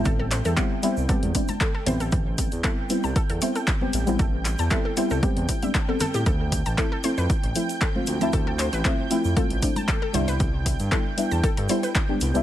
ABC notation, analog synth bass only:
X:1
M:4/4
L:1/16
Q:"Swing 16ths" 1/4=116
K:Am
V:1 name="Analog synth bass" clef=bass
A,,,3 E,, z3 C,, z E,, z4 A,,, A,,, | A,,,3 E,, z3 C,, z E,, z4 A,,, A,,, | A,,,3 E,, z3 C,, z E,, z4 z A,, | D,,3 A,,, z3 F,, z A,,, z4 D,, D,, |
D,,3 A,,, z3 F,, z A,,, z4 C,, C,, | C,,3 G,, z3 E,, z G,, z4 C,, z |]